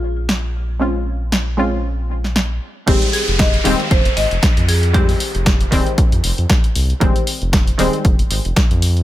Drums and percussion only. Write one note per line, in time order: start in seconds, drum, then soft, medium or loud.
0.29 snare loud
1.32 snare loud
2.24 snare soft
2.36 snare loud
2.88 kick loud
2.88 closed hi-hat medium
2.88 crash loud
3.02 closed hi-hat medium
3.13 open hi-hat loud
3.28 closed hi-hat soft
3.39 kick loud
3.39 snare loud
3.39 closed hi-hat medium
3.54 closed hi-hat medium
3.65 open hi-hat loud
3.80 closed hi-hat soft
3.91 kick loud
3.91 closed hi-hat medium
4.05 closed hi-hat medium
4.17 open hi-hat loud
4.31 closed hi-hat soft
4.43 kick loud
4.43 snare loud
4.43 closed hi-hat medium
4.57 closed hi-hat medium
4.69 open hi-hat loud
4.83 closed hi-hat soft
4.94 kick loud
4.94 closed hi-hat medium
5.09 open hi-hat medium
5.20 open hi-hat loud
5.35 closed hi-hat soft
5.46 kick loud
5.46 snare loud
5.46 closed hi-hat medium
5.61 closed hi-hat medium
5.72 kick medium
5.72 open hi-hat loud
5.86 closed hi-hat soft
5.98 kick loud
5.98 closed hi-hat medium
6.12 closed hi-hat medium
6.24 open hi-hat loud
6.38 closed hi-hat soft
6.50 kick loud
6.50 snare loud
6.50 closed hi-hat medium
6.64 closed hi-hat medium
6.75 open hi-hat loud
6.90 closed hi-hat soft
7.01 kick loud
7.01 closed hi-hat medium
7.16 closed hi-hat medium
7.27 open hi-hat loud
7.42 closed hi-hat soft
7.53 kick loud
7.53 snare loud
7.53 closed hi-hat medium
7.67 closed hi-hat medium
7.79 open hi-hat loud
7.93 closed hi-hat soft
8.05 kick loud
8.05 closed hi-hat medium
8.19 closed hi-hat medium
8.31 open hi-hat loud
8.45 closed hi-hat soft
8.56 kick loud
8.56 snare loud
8.56 closed hi-hat medium
8.71 closed hi-hat medium
8.82 open hi-hat loud
8.97 closed hi-hat soft